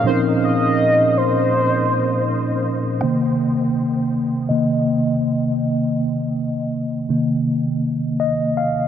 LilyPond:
<<
  \new Staff \with { instrumentName = "Soft synth lead" } { \time 4/4 \key c \phrygian \tempo 4 = 81 c''8 ees''4 c''2 r8 | r1 | r1 | }
  \new Staff \with { instrumentName = "Tine electric piano" } { \time 4/4 \key c \phrygian <bes, f c' des' ees' bes'>1 | g''2 ees''4. r8 | r2. ees''8 f''8 | }
  \new Staff \with { instrumentName = "Tine electric piano" } { \clef bass \time 4/4 \key c \phrygian r1 | <c ees bes>8 r4. <c ees bes>8 r4. | r4. <c ees bes>4. r4 | }
>>